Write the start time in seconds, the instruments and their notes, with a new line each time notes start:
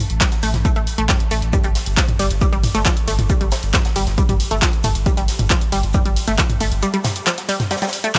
0.10 sub bass A1, closed hi-hat
0.21 synth arpeggio sound G3, kick, snare, clap, closed hi-hat, shaker
0.32 snare, closed hi-hat
0.42 sub bass A1, synth arpeggio sound A3, open hi-hat, shaker
0.54 sub bass A1, snare, closed hi-hat, mid tom
0.65 synth arpeggio sound A3, kick, closed hi-hat, shaker
0.76 sub bass A1, synth arpeggio sound A3, closed hi-hat
0.87 open hi-hat, shaker
0.98 sub bass A1, synth arpeggio sound A3, closed hi-hat
1.09 synth arpeggio sound G3, kick, snare, clap, closed hi-hat, mid tom, shaker
1.20 closed hi-hat
1.31 sub bass A1, synth arpeggio sound A3, open hi-hat, shaker
1.42 sub bass A1, closed hi-hat
1.53 synth arpeggio sound G3, kick, closed hi-hat, mid tom, shaker
1.64 sub bass G1, synth arpeggio sound G3, closed hi-hat
1.75 snare, open hi-hat, ride, shaker
1.86 sub bass G1, closed hi-hat
1.97 synth arpeggio sound F3, kick, snare, clap, closed hi-hat, shaker
2.08 closed hi-hat, mid tom
2.19 sub bass G1, synth arpeggio sound G3, open hi-hat, ride, shaker
2.30 sub bass G1, closed hi-hat
2.41 synth arpeggio sound G3, kick, closed hi-hat, shaker
2.53 sub bass G1, synth arpeggio sound G3, closed hi-hat
2.64 mid tom, open hi-hat, ride, shaker
2.75 sub bass G1, synth arpeggio sound A3, snare, closed hi-hat
2.85 synth arpeggio sound F3, kick, snare, clap, closed hi-hat, shaker
2.97 closed hi-hat
3.08 sub bass G1, synth arpeggio sound A3, open hi-hat, ride, shaker
3.19 sub bass G1, closed hi-hat, mid tom
3.30 synth arpeggio sound G3, kick, closed hi-hat, shaker
3.41 sub bass G1, synth arpeggio sound G3, closed hi-hat
3.51 snare, open hi-hat, ride, shaker
3.63 sub bass G1, closed hi-hat
3.74 synth arpeggio sound F3, kick, snare, clap, closed hi-hat, mid tom, shaker
3.85 snare, closed hi-hat
3.96 sub bass G1, synth arpeggio sound G3, open hi-hat, ride, shaker
4.07 sub bass G1, snare, closed hi-hat
4.18 synth arpeggio sound G3, kick, closed hi-hat, shaker
4.29 sub bass G1, synth arpeggio sound G3, closed hi-hat, mid tom
4.40 open hi-hat, ride, shaker
4.51 sub bass G1, synth arpeggio sound A3, closed hi-hat
4.62 synth arpeggio sound F3, kick, snare, clap, closed hi-hat, shaker
4.73 closed hi-hat
4.83 sub bass G1, synth arpeggio sound A3, mid tom, open hi-hat, ride, shaker
4.95 sub bass G1, closed hi-hat
5.06 synth arpeggio sound G3, kick, closed hi-hat, shaker
5.17 sub bass G1, synth arpeggio sound G3, closed hi-hat
5.28 snare, open hi-hat, ride, shaker
5.39 sub bass G1, closed hi-hat, mid tom
5.50 synth arpeggio sound F3, kick, snare, clap, closed hi-hat, shaker
5.61 closed hi-hat
5.72 sub bass G1, synth arpeggio sound G3, open hi-hat, ride, shaker
5.83 sub bass G1, closed hi-hat
5.93 synth arpeggio sound G3, kick, closed hi-hat, mid tom, shaker
6.05 sub bass G1, synth arpeggio sound G3, closed hi-hat
6.16 open hi-hat, ride, shaker
6.28 sub bass G1, synth arpeggio sound A3, snare, closed hi-hat
6.38 synth arpeggio sound F3, kick, snare, clap, closed hi-hat, shaker
6.50 closed hi-hat, mid tom
6.60 sub bass G1, synth arpeggio sound A3, open hi-hat, ride, shaker
6.72 sub bass G1, closed hi-hat
6.82 synth arpeggio sound G3, closed hi-hat, shaker
6.94 synth arpeggio sound G3, closed hi-hat
7.04 snare, mid tom, open hi-hat, ride, shaker
7.16 closed hi-hat
7.27 synth arpeggio sound F3, snare, clap, closed hi-hat, shaker
7.38 snare, closed hi-hat
7.48 synth arpeggio sound G3, open hi-hat, ride, shaker
7.60 snare, closed hi-hat, mid tom
7.71 synth arpeggio sound G3, snare, closed hi-hat, shaker
7.76 snare, shaker
7.82 synth arpeggio sound G3, snare, closed hi-hat, shaker
7.88 snare, shaker
7.93 open hi-hat, ride, shaker
8.04 synth arpeggio sound A3, closed hi-hat
8.15 synth arpeggio sound F3, snare, clap, closed hi-hat, mid tom, shaker